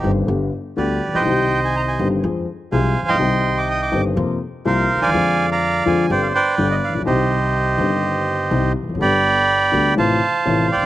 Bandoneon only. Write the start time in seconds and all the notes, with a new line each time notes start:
Already playing: D#4 G4
0.77 G4 B4 D5
1.15 C5 D#5 G5
1.65 G#5
1.76 A#5
1.88 G#5
2.72 C5 F5 G#5
3.08 D#5 G5 C6
3.58 D6
3.71 D#6
3.82 D6
4.66 A#4 C5 F5
5.02 D5 F5 G#5
5.51 D5 F5 A#5
5.87 G#5
6.11 C5 D5 G5
6.22 F5
6.34 B4 D5 G5
6.71 D#5
6.84 F5
7.06 G4 C5 D#5
9.01 D5 G5 B5
9.98 C5 F5 A5
10.72 C5 D5 G5